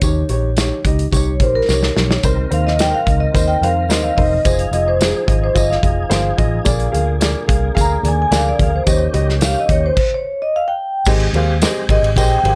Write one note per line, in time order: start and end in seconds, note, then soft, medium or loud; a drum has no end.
0.01 0.22 D#2 medium
0.01 0.82 D#3 medium
0.01 0.21 D#4 medium
0.01 0.21 G4 medium
0.01 0.21 C#5 loud
0.01 kick loud
0.01 closed hi-hat medium
0.01 tambourine medium
0.01 muted conga medium
0.29 0.70 A#1 medium
0.29 0.48 D#4 medium
0.29 0.48 G4 medium
0.29 0.48 C#5 loud
0.29 closed hi-hat medium
0.29 muted conga medium
0.57 0.76 D#4 medium
0.57 0.76 G4 medium
0.57 0.76 C#5 medium
0.57 snare loud
0.57 closed hi-hat medium
0.57 tambourine medium
0.57 high conga medium
0.84 1.05 C#2 medium
0.84 1.04 D#4 medium
0.84 1.04 G4 medium
0.84 1.04 D#5 medium
0.84 kick loud
0.84 closed hi-hat medium
0.99 closed hi-hat medium
1.11 1.40 C2 medium
1.11 1.31 D#4 medium
1.11 1.31 G4 medium
1.11 1.31 C#5 loud
1.11 kick medium
1.11 closed hi-hat medium
1.11 tambourine medium
1.11 muted conga soft
1.17 1.43 C#5 medium
1.40 1.60 A#1 medium
1.40 1.60 D#4 medium
1.40 1.60 G4 medium
1.40 1.60 A#4 medium
1.40 1.56 C5 medium
1.40 kick medium
1.40 closed hi-hat medium
1.40 muted conga soft
1.40 low conga medium
1.55 1.98 A#4 medium
1.68 1.89 C2 medium
1.68 1.87 D#4 medium
1.68 1.87 G4 medium
1.68 1.87 C#5 medium
1.68 snare medium
1.68 tambourine medium
1.68 high conga medium
1.83 snare medium
1.95 2.17 B1 medium
1.95 2.14 D#4 medium
1.95 2.14 G4 medium
1.95 2.15 C#5 medium
1.95 2.23 C#5 medium
1.95 snare medium
1.95 high conga medium
2.11 snare loud
2.23 2.44 C2 medium
2.23 3.03 C3 medium
2.23 4.43 D#3 medium
2.23 4.44 C4 medium
2.23 2.42 D#4 medium
2.23 2.43 A#4 medium
2.23 4.43 A#4 medium
2.23 2.43 C5 loud
2.23 kick loud
2.23 closed hi-hat medium
2.23 tambourine medium
2.23 muted conga medium
2.51 2.92 D#2 medium
2.51 2.70 D#4 medium
2.51 2.70 A#4 medium
2.51 2.70 C5 medium
2.51 2.67 F5 loud
2.51 closed hi-hat medium
2.51 muted conga medium
2.67 2.80 D#5 medium
2.67 snare soft
2.79 2.98 D#4 medium
2.79 2.98 A#4 medium
2.79 2.98 C5 medium
2.79 2.86 G5 loud
2.79 snare loud
2.79 closed hi-hat medium
2.79 tambourine medium
2.79 high conga medium
2.94 3.19 F5 medium
3.06 3.27 C#2 medium
3.06 3.26 D#4 medium
3.06 3.26 A#4 medium
3.06 3.26 D#5 medium
3.06 kick loud
3.06 closed hi-hat medium
3.20 3.49 D#5 loud
3.34 3.54 D#2 medium
3.34 3.53 D#4 loud
3.34 3.53 A#4 medium
3.34 3.53 C5 loud
3.34 kick medium
3.34 closed hi-hat medium
3.34 tambourine medium
3.34 muted conga soft
3.34 low conga medium
3.48 3.62 G5 loud
3.61 3.89 F2 medium
3.61 3.81 D#4 medium
3.61 3.81 A#4 medium
3.61 3.81 C5 medium
3.61 3.91 F5 loud
3.61 closed hi-hat medium
3.61 muted conga soft
3.61 low conga medium
3.89 4.10 D#2 medium
3.89 4.08 D#4 medium
3.89 4.08 A#4 medium
3.89 4.08 C5 medium
3.89 4.03 D#5 medium
3.89 snare loud
3.89 closed hi-hat medium
3.89 tambourine medium
3.89 high conga medium
4.03 4.18 F5 medium
4.17 4.38 E1 medium
4.17 4.36 D#4 medium
4.17 4.36 A#4 medium
4.17 4.36 C5 medium
4.17 4.46 D#5 medium
4.17 kick medium
4.17 open hi-hat soft
4.17 high conga medium
4.45 4.65 F1 loud
4.45 6.65 F3 medium
4.45 6.65 D#4 medium
4.45 4.64 F4 medium
4.45 4.64 G#4 medium
4.45 8.83 G#4 medium
4.45 4.59 C5 loud
4.45 4.64 D#5 loud
4.45 kick loud
4.45 closed hi-hat medium
4.45 tambourine medium
4.45 muted conga medium
4.59 4.66 F5 medium
4.59 closed hi-hat medium
4.71 5.12 F1 medium
4.71 4.91 F4 medium
4.71 4.91 G#4 medium
4.71 4.87 D#5 loud
4.71 4.91 D#5 medium
4.71 closed hi-hat medium
4.71 muted conga medium
4.88 5.01 C5 medium
5.00 5.19 F4 medium
5.00 5.19 G#4 medium
5.00 5.16 G#4 medium
5.00 5.19 D#5 medium
5.00 snare loud
5.00 closed hi-hat medium
5.00 tambourine medium
5.00 high conga medium
5.16 5.29 C5 medium
5.27 5.48 G#1 medium
5.27 5.46 F4 medium
5.27 5.46 G#4 medium
5.27 5.46 D#5 medium
5.27 5.43 D#5 medium
5.27 kick loud
5.27 closed hi-hat medium
5.44 5.57 C5 medium
5.54 5.76 G1 medium
5.54 5.73 F4 loud
5.54 5.74 G#4 medium
5.54 5.74 D#5 loud
5.54 5.71 D#5 medium
5.54 kick medium
5.54 closed hi-hat medium
5.54 tambourine medium
5.54 muted conga soft
5.70 7.04 F5 medium
5.70 snare soft
5.83 6.03 F1 medium
5.83 6.01 F4 medium
5.83 6.01 G#4 medium
5.83 6.01 D#5 medium
5.83 kick medium
5.83 closed hi-hat medium
5.83 muted conga soft
5.83 low conga medium
6.09 6.31 G1 medium
6.09 6.28 F4 medium
6.09 6.29 G#4 medium
6.09 6.29 C5 loud
6.09 snare loud
6.09 closed hi-hat medium
6.09 tambourine medium
6.09 high conga medium
6.37 6.59 A1 medium
6.37 6.56 F4 medium
6.37 6.56 G#4 medium
6.37 6.56 D#5 loud
6.37 kick medium
6.37 closed hi-hat medium
6.37 high conga medium
6.64 6.86 A#1 loud
6.64 7.44 A#2 medium
6.64 8.85 D3 medium
6.64 8.85 A#3 medium
6.64 6.84 G#4 loud
6.64 6.84 A#4 loud
6.64 6.84 D5 loud
6.64 kick loud
6.64 closed hi-hat medium
6.64 tambourine medium
6.64 muted conga medium
6.80 closed hi-hat medium
6.92 7.34 D2 medium
6.92 7.11 G#4 medium
6.92 7.11 A#4 medium
6.92 7.11 F5 loud
6.92 closed hi-hat medium
6.92 muted conga medium
7.20 7.39 G#4 medium
7.20 7.39 A#4 medium
7.20 7.39 D5 medium
7.20 snare loud
7.20 closed hi-hat medium
7.20 tambourine medium
7.20 high conga medium
7.47 7.69 C2 medium
7.47 7.66 G#4 medium
7.47 7.66 A#4 medium
7.47 7.66 F5 medium
7.47 kick loud
7.47 closed hi-hat medium
7.74 7.97 D2 medium
7.74 7.94 G#4 loud
7.74 7.94 A#4 medium
7.74 7.94 F5 loud
7.74 kick medium
7.74 closed hi-hat medium
7.74 tambourine medium
7.74 muted conga medium
7.74 low conga medium
7.81 8.07 A#5 loud
8.03 8.24 D#2 medium
8.03 8.22 G#4 medium
8.03 8.22 A#4 medium
8.03 8.22 D5 medium
8.03 closed hi-hat medium
8.03 muted conga soft
8.03 low conga medium
8.08 8.20 G#5 loud
8.22 8.34 G#5 medium
8.31 8.52 D2 loud
8.31 8.50 G#4 medium
8.31 8.50 A#4 medium
8.31 8.50 D5 loud
8.31 snare loud
8.31 closed hi-hat medium
8.31 tambourine medium
8.31 high conga medium
8.36 8.48 F5 medium
8.48 8.61 D5 medium
8.59 8.79 D2 medium
8.59 8.77 G#4 medium
8.59 8.77 A#4 medium
8.59 8.77 F5 medium
8.59 kick medium
8.59 closed hi-hat medium
8.59 high conga medium
8.63 8.75 F5 medium
8.76 9.00 C5 medium
8.86 9.07 D#2 loud
8.86 9.65 D#3 medium
8.86 9.96 D#3 medium
8.86 9.96 C#4 medium
8.86 9.05 G4 medium
8.86 9.96 G4 medium
8.86 9.05 C#5 medium
8.86 9.05 D#5 loud
8.86 kick loud
8.86 closed hi-hat medium
8.86 tambourine medium
8.86 muted conga medium
9.13 9.54 C#2 loud
9.13 9.32 G4 medium
9.13 9.33 C#5 medium
9.13 9.32 D#5 loud
9.13 closed hi-hat medium
9.13 muted conga medium
9.29 snare soft
9.41 9.60 G4 medium
9.41 9.60 C#5 medium
9.41 9.60 F5 medium
9.41 9.57 F5 medium
9.41 snare loud
9.41 closed hi-hat medium
9.41 tambourine medium
9.41 high conga medium
9.60 9.72 D#5 medium
9.69 9.89 D#2 medium
9.69 9.88 G4 medium
9.69 9.88 C#5 medium
9.69 9.77 C#5 medium
9.69 9.88 D#5 medium
9.69 kick loud
9.69 closed hi-hat medium
9.86 9.98 C5 medium
9.97 10.12 C5 medium
9.97 kick loud
9.97 crash medium
10.14 10.41 C#5 medium
10.42 10.54 D#5 medium
10.56 10.68 F5 medium
10.68 11.05 G5 loud
11.05 11.27 G#1 loud
11.05 11.85 G#2 medium
11.05 12.55 C4 medium
11.05 11.25 G4 medium
11.05 12.55 G4 medium
11.05 11.25 G#4 medium
11.05 12.55 G#4 medium
11.05 11.25 C5 medium
11.05 11.25 D#5 loud
11.05 kick loud
11.05 crash loud
11.05 tambourine medium
11.05 muted conga medium
11.20 ride soft
11.33 11.64 D#2 medium
11.33 11.53 G4 medium
11.33 11.53 G#4 medium
11.33 11.53 C5 medium
11.33 11.53 F5 loud
11.33 ride medium
11.33 muted conga medium
11.62 11.80 G4 medium
11.62 11.80 G#4 medium
11.62 11.80 C5 medium
11.62 11.80 D#5 loud
11.62 snare loud
11.62 ride medium
11.62 tambourine loud
11.62 high conga medium
11.89 11.99 G#1 medium
11.89 12.08 G4 medium
11.89 12.08 G#4 medium
11.89 12.08 C5 medium
11.89 12.08 D#5 medium
11.89 12.03 D#5 medium
11.89 kick loud
11.89 ride medium
12.03 12.16 G#1 medium
12.03 ride medium
12.16 12.36 A#1 loud
12.16 12.35 G4 loud
12.16 12.35 G#4 medium
12.16 12.36 C5 medium
12.16 12.36 D#5 loud
12.16 12.55 G5 loud
12.16 kick medium
12.16 ride medium
12.16 tambourine medium
12.16 muted conga soft
12.16 low conga medium
12.43 12.55 G#1 medium
12.43 12.55 G4 medium
12.43 12.55 G#4 medium
12.43 12.55 C5 medium
12.43 12.55 F5 medium
12.43 ride medium
12.43 muted conga soft
12.43 low conga medium